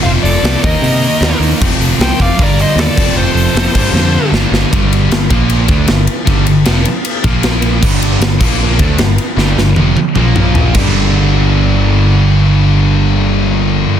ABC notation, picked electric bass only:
X:1
M:4/4
L:1/8
Q:1/4=154
K:Gm
V:1 name="Picked electric bass" clef=bass
F,,, F,,, C,, E,, C,2 E,, E,, | F,,, F,,, C,, F,,, G,,,2 E,, F,,, | F,,, F,,, F,,, G,,, F,,2 G,,, G,,, | G,,,2 G,,, B,,,2 D,, G,,, z |
G,,, G,,, F,,, z2 B,,,3 | G,,,2 G,,, B,,,2 D,, G,,, z | G,,, G,,, F,,, z B,,,3 G,,,- | G,,,8- |
G,,,8 |]